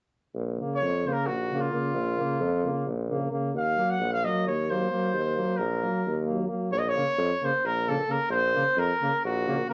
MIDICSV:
0, 0, Header, 1, 5, 480
1, 0, Start_track
1, 0, Key_signature, -5, "minor"
1, 0, Tempo, 500000
1, 9344, End_track
2, 0, Start_track
2, 0, Title_t, "Trumpet"
2, 0, Program_c, 0, 56
2, 720, Note_on_c, 0, 73, 88
2, 1029, Note_on_c, 0, 72, 57
2, 1044, Note_off_c, 0, 73, 0
2, 1082, Note_on_c, 0, 70, 70
2, 1097, Note_off_c, 0, 72, 0
2, 1211, Note_on_c, 0, 66, 69
2, 1226, Note_off_c, 0, 70, 0
2, 1545, Note_on_c, 0, 65, 56
2, 1559, Note_off_c, 0, 66, 0
2, 2797, Note_off_c, 0, 65, 0
2, 3435, Note_on_c, 0, 77, 75
2, 3750, Note_on_c, 0, 78, 86
2, 3764, Note_off_c, 0, 77, 0
2, 3951, Note_off_c, 0, 78, 0
2, 3961, Note_on_c, 0, 77, 77
2, 4075, Note_on_c, 0, 75, 78
2, 4090, Note_off_c, 0, 77, 0
2, 4278, Note_off_c, 0, 75, 0
2, 4291, Note_on_c, 0, 73, 74
2, 4513, Note_on_c, 0, 72, 68
2, 4527, Note_off_c, 0, 73, 0
2, 5348, Note_on_c, 0, 70, 57
2, 5363, Note_off_c, 0, 72, 0
2, 5991, Note_off_c, 0, 70, 0
2, 6449, Note_on_c, 0, 73, 90
2, 6513, Note_on_c, 0, 75, 62
2, 6528, Note_off_c, 0, 73, 0
2, 6608, Note_on_c, 0, 73, 93
2, 6622, Note_off_c, 0, 75, 0
2, 7151, Note_on_c, 0, 72, 74
2, 7166, Note_off_c, 0, 73, 0
2, 7351, Note_on_c, 0, 70, 82
2, 7365, Note_off_c, 0, 72, 0
2, 7573, Note_on_c, 0, 69, 69
2, 7588, Note_off_c, 0, 70, 0
2, 7787, Note_on_c, 0, 70, 80
2, 7802, Note_off_c, 0, 69, 0
2, 7973, Note_off_c, 0, 70, 0
2, 7979, Note_on_c, 0, 72, 85
2, 8437, Note_on_c, 0, 70, 86
2, 8452, Note_off_c, 0, 72, 0
2, 8874, Note_off_c, 0, 70, 0
2, 8880, Note_on_c, 0, 66, 79
2, 9275, Note_off_c, 0, 66, 0
2, 9309, Note_on_c, 0, 70, 83
2, 9344, Note_off_c, 0, 70, 0
2, 9344, End_track
3, 0, Start_track
3, 0, Title_t, "Trombone"
3, 0, Program_c, 1, 57
3, 567, Note_on_c, 1, 58, 45
3, 769, Note_off_c, 1, 58, 0
3, 1018, Note_on_c, 1, 58, 47
3, 1219, Note_off_c, 1, 58, 0
3, 1461, Note_on_c, 1, 58, 55
3, 1652, Note_off_c, 1, 58, 0
3, 1664, Note_on_c, 1, 58, 48
3, 1855, Note_off_c, 1, 58, 0
3, 2089, Note_on_c, 1, 58, 58
3, 2293, Note_off_c, 1, 58, 0
3, 2539, Note_on_c, 1, 58, 50
3, 2742, Note_off_c, 1, 58, 0
3, 2975, Note_on_c, 1, 58, 53
3, 3173, Note_off_c, 1, 58, 0
3, 3181, Note_on_c, 1, 58, 50
3, 3377, Note_off_c, 1, 58, 0
3, 3626, Note_on_c, 1, 58, 54
3, 3826, Note_off_c, 1, 58, 0
3, 4063, Note_on_c, 1, 58, 53
3, 4269, Note_off_c, 1, 58, 0
3, 4505, Note_on_c, 1, 58, 50
3, 4699, Note_off_c, 1, 58, 0
3, 4705, Note_on_c, 1, 58, 48
3, 4904, Note_off_c, 1, 58, 0
3, 5142, Note_on_c, 1, 58, 44
3, 5349, Note_off_c, 1, 58, 0
3, 5579, Note_on_c, 1, 58, 45
3, 5792, Note_off_c, 1, 58, 0
3, 6008, Note_on_c, 1, 58, 44
3, 6219, Note_off_c, 1, 58, 0
3, 6224, Note_on_c, 1, 58, 38
3, 6429, Note_off_c, 1, 58, 0
3, 6675, Note_on_c, 1, 58, 52
3, 6760, Note_off_c, 1, 58, 0
3, 7130, Note_on_c, 1, 58, 50
3, 7213, Note_off_c, 1, 58, 0
3, 7560, Note_on_c, 1, 58, 48
3, 7642, Note_off_c, 1, 58, 0
3, 7757, Note_on_c, 1, 58, 47
3, 7840, Note_off_c, 1, 58, 0
3, 8198, Note_on_c, 1, 58, 60
3, 8284, Note_off_c, 1, 58, 0
3, 8653, Note_on_c, 1, 58, 57
3, 8737, Note_off_c, 1, 58, 0
3, 9093, Note_on_c, 1, 58, 62
3, 9175, Note_off_c, 1, 58, 0
3, 9301, Note_on_c, 1, 58, 55
3, 9344, Note_off_c, 1, 58, 0
3, 9344, End_track
4, 0, Start_track
4, 0, Title_t, "Euphonium"
4, 0, Program_c, 2, 58
4, 574, Note_on_c, 2, 49, 46
4, 773, Note_off_c, 2, 49, 0
4, 1011, Note_on_c, 2, 49, 50
4, 1215, Note_off_c, 2, 49, 0
4, 1449, Note_on_c, 2, 49, 54
4, 1646, Note_off_c, 2, 49, 0
4, 1654, Note_on_c, 2, 49, 48
4, 1850, Note_off_c, 2, 49, 0
4, 2097, Note_on_c, 2, 49, 52
4, 2297, Note_off_c, 2, 49, 0
4, 2537, Note_on_c, 2, 49, 51
4, 2741, Note_off_c, 2, 49, 0
4, 2971, Note_on_c, 2, 49, 54
4, 3170, Note_off_c, 2, 49, 0
4, 3181, Note_on_c, 2, 49, 52
4, 3377, Note_off_c, 2, 49, 0
4, 3624, Note_on_c, 2, 54, 57
4, 3825, Note_off_c, 2, 54, 0
4, 4077, Note_on_c, 2, 54, 56
4, 4276, Note_off_c, 2, 54, 0
4, 4512, Note_on_c, 2, 54, 52
4, 4706, Note_off_c, 2, 54, 0
4, 4718, Note_on_c, 2, 54, 53
4, 4911, Note_off_c, 2, 54, 0
4, 5156, Note_on_c, 2, 54, 47
4, 5356, Note_off_c, 2, 54, 0
4, 5599, Note_on_c, 2, 54, 51
4, 5802, Note_off_c, 2, 54, 0
4, 6030, Note_on_c, 2, 54, 49
4, 6231, Note_off_c, 2, 54, 0
4, 6244, Note_on_c, 2, 54, 44
4, 6439, Note_off_c, 2, 54, 0
4, 6686, Note_on_c, 2, 49, 55
4, 6768, Note_off_c, 2, 49, 0
4, 7127, Note_on_c, 2, 49, 59
4, 7210, Note_off_c, 2, 49, 0
4, 7572, Note_on_c, 2, 49, 60
4, 7651, Note_off_c, 2, 49, 0
4, 7761, Note_on_c, 2, 49, 59
4, 7843, Note_off_c, 2, 49, 0
4, 8216, Note_on_c, 2, 49, 63
4, 8298, Note_off_c, 2, 49, 0
4, 8658, Note_on_c, 2, 49, 67
4, 8742, Note_off_c, 2, 49, 0
4, 9100, Note_on_c, 2, 49, 58
4, 9180, Note_off_c, 2, 49, 0
4, 9307, Note_on_c, 2, 49, 57
4, 9344, Note_off_c, 2, 49, 0
4, 9344, End_track
5, 0, Start_track
5, 0, Title_t, "Tuba"
5, 0, Program_c, 3, 58
5, 329, Note_on_c, 3, 34, 69
5, 574, Note_off_c, 3, 34, 0
5, 783, Note_on_c, 3, 41, 80
5, 1026, Note_off_c, 3, 41, 0
5, 1224, Note_on_c, 3, 34, 60
5, 1570, Note_off_c, 3, 34, 0
5, 1864, Note_on_c, 3, 34, 79
5, 2106, Note_off_c, 3, 34, 0
5, 2305, Note_on_c, 3, 41, 94
5, 2549, Note_off_c, 3, 41, 0
5, 2747, Note_on_c, 3, 34, 73
5, 3095, Note_off_c, 3, 34, 0
5, 3396, Note_on_c, 3, 39, 64
5, 3637, Note_off_c, 3, 39, 0
5, 3838, Note_on_c, 3, 34, 82
5, 4081, Note_off_c, 3, 34, 0
5, 4282, Note_on_c, 3, 39, 67
5, 4629, Note_off_c, 3, 39, 0
5, 4929, Note_on_c, 3, 39, 76
5, 5170, Note_off_c, 3, 39, 0
5, 5366, Note_on_c, 3, 34, 88
5, 5610, Note_off_c, 3, 34, 0
5, 5822, Note_on_c, 3, 39, 69
5, 6166, Note_off_c, 3, 39, 0
5, 6447, Note_on_c, 3, 34, 76
5, 6692, Note_off_c, 3, 34, 0
5, 6893, Note_on_c, 3, 41, 96
5, 7024, Note_off_c, 3, 41, 0
5, 7337, Note_on_c, 3, 34, 72
5, 7685, Note_off_c, 3, 34, 0
5, 7966, Note_on_c, 3, 34, 89
5, 8214, Note_off_c, 3, 34, 0
5, 8417, Note_on_c, 3, 41, 94
5, 8549, Note_off_c, 3, 41, 0
5, 8875, Note_on_c, 3, 34, 78
5, 9222, Note_off_c, 3, 34, 0
5, 9344, End_track
0, 0, End_of_file